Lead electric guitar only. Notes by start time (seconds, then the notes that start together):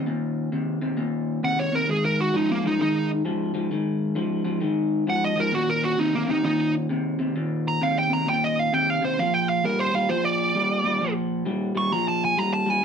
1.45 F#5
1.60 C#5
1.75 A#4
1.91 G#4
2.05 A#4
2.21 F#4
2.36 D#4
2.51 A#3
2.67 D#4
2.82 D#4
5.10 F#5
5.24 D#5
5.40 A#4
5.55 F#4
5.70 A#4
5.84 F#4
5.99 D#4
6.15 A#3
6.30 D#4
6.45 D#4
7.68 A#5
7.83 F5
7.99 G5
8.13 A#5
8.29 G5
8.44 D#5
8.59 F5
8.74 G5
8.90 F5
9.05 C5
9.19 F5
9.34 G5
9.49 F5
9.65 A#4
9.79 C5
9.95 F5
10.09 C5
10.25 D5
11.77 C#6
11.92 A#5
12.08 A5
12.25 G#5
12.39 A#5
12.53 A5
12.70 G#5